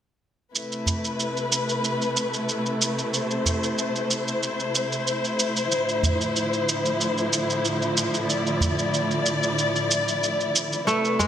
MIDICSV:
0, 0, Header, 1, 5, 480
1, 0, Start_track
1, 0, Key_signature, 0, "minor"
1, 0, Tempo, 645161
1, 406, Time_signature, 4, 2, 24, 8
1, 8388, End_track
2, 0, Start_track
2, 0, Title_t, "String section"
2, 0, Program_c, 0, 48
2, 403, Note_on_c, 0, 48, 66
2, 405, Note_on_c, 0, 57, 64
2, 406, Note_on_c, 0, 71, 75
2, 408, Note_on_c, 0, 64, 64
2, 2307, Note_off_c, 0, 71, 0
2, 2326, Note_on_c, 0, 72, 75
2, 4214, Note_off_c, 0, 48, 0
2, 4216, Note_off_c, 0, 57, 0
2, 4242, Note_on_c, 0, 50, 64
2, 4244, Note_on_c, 0, 45, 71
2, 4244, Note_on_c, 0, 53, 66
2, 6136, Note_off_c, 0, 72, 0
2, 6168, Note_on_c, 0, 74, 79
2, 8054, Note_off_c, 0, 50, 0
2, 8055, Note_off_c, 0, 45, 0
2, 8055, Note_off_c, 0, 53, 0
2, 8068, Note_off_c, 0, 74, 0
2, 8085, Note_on_c, 0, 71, 81
2, 8091, Note_on_c, 0, 48, 68
2, 8388, Note_off_c, 0, 48, 0
2, 8388, Note_off_c, 0, 64, 0
2, 8388, Note_off_c, 0, 71, 0
2, 8388, End_track
3, 0, Start_track
3, 0, Title_t, "Kora"
3, 0, Program_c, 1, 46
3, 8087, Note_on_c, 1, 57, 71
3, 8328, Note_on_c, 1, 56, 71
3, 8373, Note_off_c, 1, 57, 0
3, 8388, Note_off_c, 1, 56, 0
3, 8388, End_track
4, 0, Start_track
4, 0, Title_t, "Udu"
4, 641, Note_on_c, 9, 64, 84
4, 716, Note_off_c, 9, 64, 0
4, 2571, Note_on_c, 9, 64, 85
4, 2646, Note_off_c, 9, 64, 0
4, 4488, Note_on_c, 9, 64, 94
4, 4563, Note_off_c, 9, 64, 0
4, 6404, Note_on_c, 9, 64, 80
4, 6478, Note_off_c, 9, 64, 0
4, 8328, Note_on_c, 9, 64, 77
4, 8388, Note_off_c, 9, 64, 0
4, 8388, End_track
5, 0, Start_track
5, 0, Title_t, "Drums"
5, 412, Note_on_c, 9, 82, 39
5, 486, Note_off_c, 9, 82, 0
5, 538, Note_on_c, 9, 82, 18
5, 612, Note_off_c, 9, 82, 0
5, 651, Note_on_c, 9, 82, 58
5, 725, Note_off_c, 9, 82, 0
5, 779, Note_on_c, 9, 82, 28
5, 853, Note_off_c, 9, 82, 0
5, 891, Note_on_c, 9, 82, 38
5, 966, Note_off_c, 9, 82, 0
5, 1020, Note_on_c, 9, 82, 18
5, 1094, Note_off_c, 9, 82, 0
5, 1132, Note_on_c, 9, 82, 68
5, 1206, Note_off_c, 9, 82, 0
5, 1259, Note_on_c, 9, 82, 27
5, 1334, Note_off_c, 9, 82, 0
5, 1372, Note_on_c, 9, 82, 35
5, 1446, Note_off_c, 9, 82, 0
5, 1501, Note_on_c, 9, 82, 18
5, 1575, Note_off_c, 9, 82, 0
5, 1612, Note_on_c, 9, 82, 63
5, 1686, Note_off_c, 9, 82, 0
5, 1740, Note_on_c, 9, 82, 29
5, 1814, Note_off_c, 9, 82, 0
5, 1852, Note_on_c, 9, 82, 39
5, 1927, Note_off_c, 9, 82, 0
5, 1980, Note_on_c, 9, 82, 17
5, 2054, Note_off_c, 9, 82, 0
5, 2095, Note_on_c, 9, 82, 67
5, 2169, Note_off_c, 9, 82, 0
5, 2222, Note_on_c, 9, 82, 29
5, 2296, Note_off_c, 9, 82, 0
5, 2335, Note_on_c, 9, 82, 38
5, 2409, Note_off_c, 9, 82, 0
5, 2461, Note_on_c, 9, 82, 20
5, 2536, Note_off_c, 9, 82, 0
5, 2577, Note_on_c, 9, 82, 66
5, 2651, Note_off_c, 9, 82, 0
5, 2705, Note_on_c, 9, 82, 28
5, 2779, Note_off_c, 9, 82, 0
5, 2816, Note_on_c, 9, 82, 39
5, 2890, Note_off_c, 9, 82, 0
5, 2944, Note_on_c, 9, 82, 20
5, 3018, Note_off_c, 9, 82, 0
5, 3055, Note_on_c, 9, 82, 72
5, 3130, Note_off_c, 9, 82, 0
5, 3184, Note_on_c, 9, 82, 32
5, 3259, Note_off_c, 9, 82, 0
5, 3296, Note_on_c, 9, 82, 36
5, 3370, Note_off_c, 9, 82, 0
5, 3422, Note_on_c, 9, 82, 20
5, 3496, Note_off_c, 9, 82, 0
5, 3534, Note_on_c, 9, 82, 69
5, 3608, Note_off_c, 9, 82, 0
5, 3663, Note_on_c, 9, 82, 28
5, 3737, Note_off_c, 9, 82, 0
5, 3774, Note_on_c, 9, 82, 40
5, 3849, Note_off_c, 9, 82, 0
5, 3903, Note_on_c, 9, 82, 19
5, 3977, Note_off_c, 9, 82, 0
5, 4013, Note_on_c, 9, 82, 69
5, 4087, Note_off_c, 9, 82, 0
5, 4140, Note_on_c, 9, 82, 31
5, 4215, Note_off_c, 9, 82, 0
5, 4253, Note_on_c, 9, 82, 41
5, 4327, Note_off_c, 9, 82, 0
5, 4382, Note_on_c, 9, 82, 21
5, 4457, Note_off_c, 9, 82, 0
5, 4495, Note_on_c, 9, 82, 67
5, 4569, Note_off_c, 9, 82, 0
5, 4622, Note_on_c, 9, 82, 31
5, 4697, Note_off_c, 9, 82, 0
5, 4733, Note_on_c, 9, 82, 41
5, 4808, Note_off_c, 9, 82, 0
5, 4861, Note_on_c, 9, 82, 21
5, 4935, Note_off_c, 9, 82, 0
5, 4975, Note_on_c, 9, 82, 71
5, 5050, Note_off_c, 9, 82, 0
5, 5101, Note_on_c, 9, 82, 30
5, 5175, Note_off_c, 9, 82, 0
5, 5214, Note_on_c, 9, 82, 40
5, 5289, Note_off_c, 9, 82, 0
5, 5341, Note_on_c, 9, 82, 19
5, 5416, Note_off_c, 9, 82, 0
5, 5452, Note_on_c, 9, 82, 73
5, 5527, Note_off_c, 9, 82, 0
5, 5581, Note_on_c, 9, 82, 31
5, 5656, Note_off_c, 9, 82, 0
5, 5691, Note_on_c, 9, 82, 39
5, 5766, Note_off_c, 9, 82, 0
5, 5819, Note_on_c, 9, 82, 20
5, 5894, Note_off_c, 9, 82, 0
5, 5931, Note_on_c, 9, 82, 74
5, 6005, Note_off_c, 9, 82, 0
5, 6059, Note_on_c, 9, 82, 30
5, 6133, Note_off_c, 9, 82, 0
5, 6173, Note_on_c, 9, 82, 39
5, 6247, Note_off_c, 9, 82, 0
5, 6300, Note_on_c, 9, 82, 21
5, 6374, Note_off_c, 9, 82, 0
5, 6414, Note_on_c, 9, 82, 68
5, 6488, Note_off_c, 9, 82, 0
5, 6539, Note_on_c, 9, 82, 29
5, 6613, Note_off_c, 9, 82, 0
5, 6652, Note_on_c, 9, 82, 39
5, 6726, Note_off_c, 9, 82, 0
5, 6778, Note_on_c, 9, 82, 21
5, 6853, Note_off_c, 9, 82, 0
5, 6889, Note_on_c, 9, 82, 70
5, 6963, Note_off_c, 9, 82, 0
5, 7017, Note_on_c, 9, 82, 30
5, 7092, Note_off_c, 9, 82, 0
5, 7131, Note_on_c, 9, 82, 40
5, 7206, Note_off_c, 9, 82, 0
5, 7260, Note_on_c, 9, 82, 19
5, 7334, Note_off_c, 9, 82, 0
5, 7373, Note_on_c, 9, 82, 69
5, 7447, Note_off_c, 9, 82, 0
5, 7501, Note_on_c, 9, 82, 31
5, 7576, Note_off_c, 9, 82, 0
5, 7615, Note_on_c, 9, 82, 41
5, 7689, Note_off_c, 9, 82, 0
5, 7742, Note_on_c, 9, 82, 21
5, 7816, Note_off_c, 9, 82, 0
5, 7853, Note_on_c, 9, 82, 75
5, 7927, Note_off_c, 9, 82, 0
5, 7982, Note_on_c, 9, 82, 31
5, 8056, Note_off_c, 9, 82, 0
5, 8095, Note_on_c, 9, 82, 39
5, 8170, Note_off_c, 9, 82, 0
5, 8221, Note_on_c, 9, 82, 21
5, 8295, Note_off_c, 9, 82, 0
5, 8334, Note_on_c, 9, 82, 65
5, 8388, Note_off_c, 9, 82, 0
5, 8388, End_track
0, 0, End_of_file